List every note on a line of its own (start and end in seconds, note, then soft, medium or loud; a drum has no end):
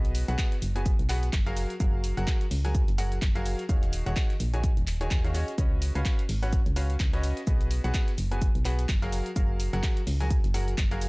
0.00 0.25 B1 medium
0.00 0.25 B3 medium
0.00 0.25 F#4 medium
0.00 0.25 G#4 medium
0.00 0.25 B4 medium
0.00 0.25 D#5 medium
0.05 closed hi-hat soft
0.15 open hi-hat loud
0.15 shaker medium
0.28 0.37 B1 loud
0.28 0.54 B3 medium
0.28 0.54 F#4 medium
0.28 0.54 G#4 medium
0.28 0.54 B4 medium
0.28 0.54 F#5 loud
0.28 closed hi-hat medium
0.38 kick loud
0.38 snare loud
0.38 clap loud
0.38 closed hi-hat medium
0.38 shaker medium
0.52 snare soft
0.52 closed hi-hat soft
0.62 0.95 F#1 medium
0.62 open hi-hat loud
0.62 shaker medium
0.76 0.91 B3 medium
0.76 0.91 F#4 medium
0.76 0.91 G#4 medium
0.76 0.91 B4 medium
0.76 0.91 G#5 medium
0.76 closed hi-hat medium
0.86 kick loud
0.86 closed hi-hat medium
0.86 shaker medium
0.99 1.30 B1 loud
0.99 closed hi-hat soft
1.09 1.27 B3 medium
1.09 1.27 F#4 medium
1.09 1.27 G#4 medium
1.09 1.27 B4 medium
1.09 1.27 F#5 loud
1.09 clap medium
1.09 open hi-hat loud
1.09 shaker medium
1.23 closed hi-hat medium
1.23 closed hi-hat soft
1.33 1.66 F#1 medium
1.33 kick loud
1.33 snare loud
1.33 clap loud
1.33 closed hi-hat medium
1.33 shaker medium
1.46 1.72 F#3 medium
1.46 1.72 F#4 medium
1.46 1.72 G#4 medium
1.46 1.72 A#4 medium
1.46 1.72 F5 loud
1.46 snare soft
1.46 closed hi-hat soft
1.57 snare medium
1.57 open hi-hat loud
1.57 shaker medium
1.70 closed hi-hat medium
1.80 2.14 F#1 loud
1.80 2.14 F#3 medium
1.80 2.14 F#4 medium
1.80 2.14 G#4 medium
1.80 2.14 A#4 medium
1.80 2.14 F5 medium
1.80 kick loud
1.80 closed hi-hat medium
1.80 shaker medium
2.04 open hi-hat loud
2.04 shaker medium
2.17 2.26 F#1 medium
2.17 2.43 F#3 medium
2.17 2.43 F#4 medium
2.17 2.43 G#4 medium
2.17 2.43 A#4 medium
2.17 2.43 F#5 loud
2.17 closed hi-hat medium
2.27 kick loud
2.27 snare loud
2.27 clap loud
2.27 closed hi-hat medium
2.27 shaker medium
2.41 closed hi-hat soft
2.51 2.84 C#2 medium
2.51 open hi-hat loud
2.51 open hi-hat medium
2.65 2.80 F#3 medium
2.65 2.80 F#4 medium
2.65 2.80 G#4 medium
2.65 2.80 A#4 medium
2.65 2.80 G#5 loud
2.65 closed hi-hat medium
2.75 kick loud
2.75 closed hi-hat medium
2.75 shaker medium
2.88 3.19 F#1 loud
2.88 closed hi-hat soft
2.98 3.16 F#3 medium
2.98 3.16 F#4 medium
2.98 3.16 G#4 medium
2.98 3.16 A#4 medium
2.98 3.16 F#5 loud
2.98 open hi-hat loud
2.98 shaker medium
3.12 closed hi-hat medium
3.22 3.55 F#1 medium
3.22 kick loud
3.22 snare loud
3.22 clap loud
3.22 closed hi-hat medium
3.22 shaker medium
3.35 3.61 F#3 medium
3.35 3.61 F#4 medium
3.35 3.61 G#4 medium
3.35 3.61 A#4 medium
3.35 3.61 F5 loud
3.35 snare medium
3.35 closed hi-hat soft
3.46 open hi-hat loud
3.46 shaker medium
3.59 snare soft
3.59 closed hi-hat medium
3.69 4.03 D#1 medium
3.69 4.03 D#3 medium
3.69 4.03 F#4 medium
3.69 4.03 G#4 medium
3.69 4.03 C#5 medium
3.69 4.03 F5 medium
3.69 kick loud
3.69 closed hi-hat medium
3.69 shaker medium
3.83 closed hi-hat soft
3.93 open hi-hat loud
3.93 shaker medium
4.06 4.15 D#1 medium
4.06 4.32 D#3 medium
4.06 4.32 F#4 medium
4.06 4.32 G#4 medium
4.06 4.32 C#5 medium
4.06 4.32 F#5 loud
4.06 closed hi-hat soft
4.16 kick loud
4.16 snare loud
4.16 clap loud
4.16 closed hi-hat medium
4.16 shaker medium
4.30 snare soft
4.30 closed hi-hat soft
4.40 4.73 A#1 medium
4.40 open hi-hat loud
4.40 shaker medium
4.54 4.69 D#3 medium
4.54 4.69 F#4 medium
4.54 4.69 G#4 medium
4.54 4.69 C#5 medium
4.54 4.69 G#5 loud
4.54 closed hi-hat soft
4.64 kick loud
4.64 closed hi-hat medium
4.64 shaker medium
4.77 5.08 D#1 loud
4.77 closed hi-hat soft
4.87 clap medium
4.87 open hi-hat loud
4.87 shaker medium
5.01 5.21 D#3 medium
5.01 5.21 F#4 medium
5.01 5.21 G#4 medium
5.01 5.21 C#5 medium
5.01 5.21 G#5 loud
5.01 closed hi-hat soft
5.11 5.44 D#2 medium
5.11 kick loud
5.11 snare loud
5.11 clap loud
5.11 closed hi-hat medium
5.11 shaker medium
5.24 5.32 D#3 medium
5.24 5.32 F#4 medium
5.24 5.32 G#4 medium
5.24 5.32 C#5 medium
5.24 5.32 F5 medium
5.24 snare soft
5.24 closed hi-hat soft
5.35 5.52 C#4 medium
5.35 5.52 F#4 medium
5.35 5.52 G#4 medium
5.35 5.52 C#5 medium
5.35 5.52 D#5 loud
5.35 snare medium
5.35 open hi-hat loud
5.35 shaker medium
5.48 closed hi-hat soft
5.58 5.92 C#2 medium
5.58 5.92 C#4 medium
5.58 5.92 F#4 medium
5.58 5.92 B4 medium
5.58 5.92 C#5 medium
5.58 5.92 D#5 medium
5.58 kick loud
5.58 closed hi-hat medium
5.58 shaker medium
5.82 open hi-hat loud
5.82 shaker medium
5.95 6.04 C#2 medium
5.95 6.21 C#4 medium
5.95 6.21 F#4 medium
5.95 6.21 B4 medium
5.95 6.21 C#5 medium
5.95 6.21 F5 loud
5.95 closed hi-hat soft
6.05 kick loud
6.05 snare loud
6.05 clap loud
6.05 closed hi-hat medium
6.05 shaker medium
6.19 closed hi-hat soft
6.29 6.62 G#1 loud
6.29 open hi-hat loud
6.29 open hi-hat medium
6.43 6.58 C#4 medium
6.43 6.58 F#4 medium
6.43 6.58 B4 medium
6.43 6.58 C#5 medium
6.43 6.58 F#5 medium
6.43 closed hi-hat medium
6.53 kick loud
6.53 closed hi-hat medium
6.53 shaker medium
6.66 6.97 C#2 loud
6.66 closed hi-hat soft
6.76 6.94 C#4 medium
6.76 6.94 F#4 medium
6.76 6.94 B4 medium
6.76 6.94 C#5 medium
6.76 6.94 F5 medium
6.76 open hi-hat loud
6.76 shaker medium
6.90 closed hi-hat medium
7.00 7.33 C#2 medium
7.00 kick loud
7.00 snare loud
7.00 clap loud
7.00 closed hi-hat medium
7.00 shaker medium
7.13 7.39 C#4 loud
7.13 7.39 F#4 medium
7.13 7.39 B4 medium
7.13 7.39 C#5 medium
7.13 7.39 D#5 loud
7.13 snare medium
7.13 closed hi-hat soft
7.23 open hi-hat loud
7.23 shaker medium
7.37 snare soft
7.37 closed hi-hat soft
7.47 7.80 B1 loud
7.47 7.81 B3 medium
7.47 7.81 F#4 medium
7.47 7.81 G#4 medium
7.47 7.81 B4 medium
7.47 7.81 D#5 medium
7.47 kick loud
7.47 closed hi-hat medium
7.47 shaker medium
7.61 closed hi-hat soft
7.71 open hi-hat medium
7.71 shaker medium
7.84 7.93 B1 medium
7.84 8.10 B3 medium
7.84 8.10 F#4 medium
7.84 8.10 G#4 medium
7.84 8.10 B4 medium
7.84 8.10 F#5 loud
7.84 closed hi-hat soft
7.94 kick loud
7.94 snare loud
7.94 clap loud
7.94 closed hi-hat medium
7.94 shaker medium
8.08 snare soft
8.08 closed hi-hat soft
8.18 8.51 F#1 medium
8.18 open hi-hat loud
8.18 shaker medium
8.31 8.47 B3 medium
8.31 8.47 F#4 medium
8.31 8.47 G#4 medium
8.31 8.47 B4 medium
8.31 8.47 G#5 medium
8.31 closed hi-hat medium
8.42 kick loud
8.42 closed hi-hat medium
8.42 shaker medium
8.55 8.86 B1 loud
8.55 closed hi-hat soft
8.65 8.83 B3 medium
8.65 8.83 F#4 medium
8.65 8.83 G#4 medium
8.65 8.83 B4 medium
8.65 8.83 F#5 loud
8.65 clap medium
8.65 open hi-hat medium
8.65 shaker medium
8.79 closed hi-hat medium
8.79 closed hi-hat soft
8.89 9.22 F#1 medium
8.89 kick loud
8.89 snare loud
8.89 clap loud
8.89 closed hi-hat medium
8.89 shaker medium
9.02 9.28 F#3 loud
9.02 9.28 F#4 medium
9.02 9.28 G#4 medium
9.02 9.28 A#4 medium
9.02 9.28 F5 loud
9.02 snare soft
9.02 closed hi-hat soft
9.12 snare medium
9.12 open hi-hat loud
9.12 shaker medium
9.26 closed hi-hat medium
9.36 9.69 F#1 medium
9.36 9.70 F#3 medium
9.36 9.70 F#4 medium
9.36 9.70 G#4 medium
9.36 9.70 A#4 medium
9.36 9.70 F5 medium
9.36 kick loud
9.36 closed hi-hat medium
9.36 shaker medium
9.60 open hi-hat loud
9.60 shaker medium
9.73 9.82 F#1 loud
9.73 9.99 F#3 medium
9.73 9.99 F#4 medium
9.73 9.99 G#4 medium
9.73 9.99 A#4 medium
9.73 9.99 F#5 loud
9.73 closed hi-hat medium
9.83 kick medium
9.83 snare loud
9.83 clap loud
9.83 closed hi-hat medium
9.83 shaker medium
9.97 closed hi-hat soft
10.07 10.40 C#2 loud
10.07 open hi-hat loud
10.07 open hi-hat medium
10.20 10.36 F#3 medium
10.20 10.36 F#4 medium
10.20 10.36 G#4 medium
10.20 10.36 A#4 medium
10.20 10.36 G#5 medium
10.20 closed hi-hat medium
10.30 kick loud
10.30 closed hi-hat medium
10.30 shaker medium
10.44 10.75 F#1 loud
10.44 closed hi-hat soft
10.54 10.72 F#3 medium
10.54 10.72 F#4 medium
10.54 10.72 G#4 medium
10.54 10.72 A#4 medium
10.54 10.72 F#5 loud
10.54 open hi-hat medium
10.54 shaker medium
10.68 closed hi-hat medium
10.78 11.09 F#1 medium
10.78 kick medium
10.78 snare loud
10.78 clap loud
10.78 closed hi-hat medium
10.78 shaker medium
10.91 11.09 F#3 loud
10.91 11.09 F#4 medium
10.91 11.09 G#4 medium
10.91 11.09 A#4 medium
10.91 11.09 F5 loud
10.91 snare medium
10.91 closed hi-hat soft
11.01 open hi-hat loud
11.01 shaker medium